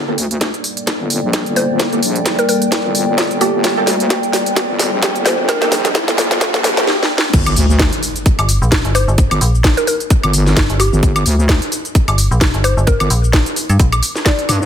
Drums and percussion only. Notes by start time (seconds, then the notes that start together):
0.18 open hi-hat
0.31 closed hi-hat
0.41 kick, snare, closed hi-hat
0.54 closed hi-hat
0.64 open hi-hat
0.77 closed hi-hat
0.87 kick, snare, closed hi-hat
1.10 open hi-hat
1.33 kick, snare, closed hi-hat
1.46 closed hi-hat
1.56 open hi-hat
1.79 kick, snare, closed hi-hat
1.93 closed hi-hat
2.03 open hi-hat
2.16 closed hi-hat
2.26 kick, snare, closed hi-hat
2.39 closed hi-hat
2.49 open hi-hat
2.62 closed hi-hat
2.72 kick, snare, closed hi-hat
2.95 open hi-hat
3.18 kick, snare, closed hi-hat
3.31 closed hi-hat
3.41 open hi-hat
3.64 kick, snare, closed hi-hat
3.87 snare, open hi-hat
4.00 closed hi-hat
4.10 kick, snare, closed hi-hat
4.23 closed hi-hat
4.33 snare, open hi-hat
4.46 closed hi-hat
4.56 kick, snare, closed hi-hat
4.79 snare, open hi-hat
5.02 kick, snare, closed hi-hat
5.16 closed hi-hat
5.26 snare, open hi-hat
5.49 kick, snare, closed hi-hat
5.62 snare, closed hi-hat
5.72 snare, open hi-hat
5.85 snare, closed hi-hat
5.95 kick, snare, closed hi-hat
6.08 snare, closed hi-hat
6.18 snare, open hi-hat
6.31 snare, closed hi-hat
6.41 kick, snare, closed hi-hat
6.54 snare
6.64 snare, open hi-hat
6.77 snare
6.87 snare
7.03 snare
7.18 snare
7.33 kick, closed hi-hat, crash, shaker
7.46 closed hi-hat, high woodblock, shaker
7.56 open hi-hat, shaker
7.70 shaker
7.79 kick, snare, closed hi-hat, shaker
7.93 closed hi-hat
8.03 open hi-hat, shaker
8.16 closed hi-hat, shaker
8.26 kick, closed hi-hat, shaker
8.39 closed hi-hat, high woodblock
8.49 open hi-hat, shaker
8.62 shaker
8.72 kick, snare, closed hi-hat, shaker
8.85 closed hi-hat
8.95 open hi-hat, high woodblock, shaker
9.09 shaker
9.18 kick, closed hi-hat, shaker
9.31 closed hi-hat, high woodblock, shaker
9.41 open hi-hat, shaker
9.55 shaker
9.64 kick, snare, closed hi-hat, shaker
9.77 closed hi-hat, shaker
9.87 open hi-hat, shaker
10.00 closed hi-hat, shaker
10.10 kick, closed hi-hat, shaker
10.23 closed hi-hat, high woodblock
10.33 open hi-hat, shaker
10.46 snare, shaker
10.57 kick, snare, closed hi-hat, shaker
10.70 closed hi-hat
10.80 open hi-hat, high woodblock, shaker
10.93 shaker
11.03 kick, closed hi-hat, shaker
11.16 closed hi-hat, high woodblock, shaker
11.26 open hi-hat, shaker
11.39 shaker
11.49 kick, snare, closed hi-hat, shaker
11.62 closed hi-hat
11.72 open hi-hat, shaker
11.85 closed hi-hat, shaker
11.95 kick, closed hi-hat, shaker
12.08 closed hi-hat, high woodblock
12.18 open hi-hat, shaker
12.32 shaker
12.41 kick, snare, closed hi-hat, shaker
12.54 closed hi-hat
12.64 open hi-hat, high woodblock, shaker
12.78 shaker
12.87 kick, closed hi-hat, shaker
13.00 closed hi-hat, high woodblock, shaker
13.10 open hi-hat, shaker
13.24 shaker
13.33 kick, snare, closed hi-hat, shaker
13.46 closed hi-hat, shaker
13.56 open hi-hat, shaker
13.69 closed hi-hat, shaker
13.79 kick, closed hi-hat, shaker
13.92 closed hi-hat, high woodblock
14.03 open hi-hat, shaker
14.16 snare, shaker
14.26 kick, snare, closed hi-hat, shaker
14.39 closed hi-hat
14.49 open hi-hat, high woodblock, shaker
14.62 shaker